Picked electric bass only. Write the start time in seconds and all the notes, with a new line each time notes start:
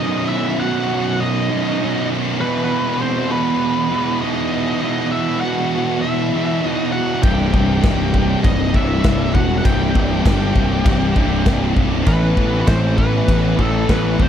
7.23 C1
7.53 C1
7.83 C1
8.44 C1
8.74 C1
9.04 C1
9.34 E1
9.65 C1
9.95 C1
10.25 G1
10.55 C1
10.85 C1
11.16 C1
11.46 C1
11.76 B0
12.07 A1
12.37 A1
12.68 A1
13.28 A1
13.59 A1
13.89 A1
14.19 D#1